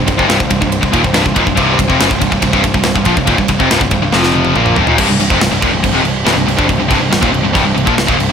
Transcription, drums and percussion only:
0.08 kick medium
0.08 ride medium
0.19 kick medium
0.30 snare loud
0.30 ride loud
0.40 kick loud
0.50 kick loud
0.50 ride medium
0.62 kick medium
0.72 ride loud
0.83 kick medium
0.93 kick medium
0.93 ride medium
1.04 kick medium
1.14 snare loud
1.14 ride loud
1.26 kick medium
1.36 kick medium
1.36 ride medium
1.47 kick medium
1.57 kick loud
1.57 ride loud
1.79 kick loud
1.79 ride medium
1.90 kick medium
2.00 snare loud
2.00 ride loud
2.11 kick loud
2.21 kick medium
2.21 ride medium
2.32 kick medium
2.42 kick medium
2.42 ride loud
2.53 kick medium
2.64 kick medium
2.64 ride medium
2.74 kick medium
2.83 snare loud
2.83 ride loud
2.96 kick medium
3.05 kick medium
3.05 ride medium
3.17 kick medium
3.27 kick loud
3.27 ride loud
3.38 kick medium
3.48 kick medium
3.48 ride medium
3.60 kick medium
3.71 snare loud
3.71 ride loud
3.81 kick loud
3.91 kick loud
3.91 ride medium
4.13 snare medium
4.23 snare medium
4.33 high tom medium
4.45 high tom medium
4.56 mid tom medium
4.66 mid tom medium
4.76 floor tom loud
4.87 floor tom loud
4.98 kick loud
4.98 crash loud
5.20 crash medium
5.30 kick loud
5.41 snare loud
5.41 crash loud
5.62 kick loud
5.62 crash medium
5.84 kick medium
5.84 crash medium
6.05 crash medium
6.26 snare loud
6.26 crash medium
6.48 crash medium
6.59 kick loud
6.69 kick loud
6.69 crash medium
6.91 kick loud
6.91 crash medium
7.12 snare loud
7.12 crash medium
7.23 kick loud
7.34 crash medium
7.55 kick loud
7.55 crash medium
7.78 crash medium
7.87 kick loud
7.98 snare loud
7.98 crash medium
8.08 kick loud
8.20 crash medium

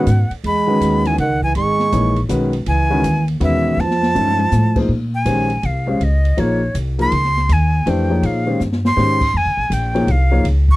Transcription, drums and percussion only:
0.07 hi-hat pedal medium
0.07 ride medium
0.31 ride soft
0.44 ride medium
0.81 hi-hat pedal soft
0.81 ride medium
1.05 snare soft
1.05 ride soft
1.18 ride medium
1.42 kick soft
1.55 ride medium
1.79 snare soft
1.92 hi-hat pedal medium
1.92 ride medium
2.16 ride soft
2.29 hi-hat pedal medium
2.29 ride medium
2.53 ride soft
2.66 ride medium
3.04 hi-hat pedal medium
3.04 ride medium
3.28 ride soft
3.41 ride medium
3.78 snare soft
3.90 snare soft
4.03 snare medium
4.15 hi-hat pedal medium
4.15 high tom medium
4.27 high tom medium
4.39 high tom medium
4.52 snare medium
4.52 hi-hat pedal medium
4.76 kick medium
4.76 crash medium
5.26 hi-hat pedal medium
5.26 ride medium
5.50 ride soft
5.63 ride medium
6.01 ride medium
6.25 ride soft
6.38 ride medium
6.75 hi-hat pedal medium
6.75 ride medium
6.99 ride soft
7.12 ride medium
7.24 snare soft
7.37 snare soft
7.49 hi-hat pedal medium
7.49 ride medium
7.87 ride medium
8.23 ride medium
8.61 snare soft
8.61 hi-hat pedal medium
8.72 snare medium
8.85 snare medium
8.97 snare medium
9.21 kick medium
9.21 crash medium
9.72 hi-hat pedal soft
9.72 ride medium
9.95 ride soft
10.08 ride medium
10.45 ride medium
10.68 kick medium

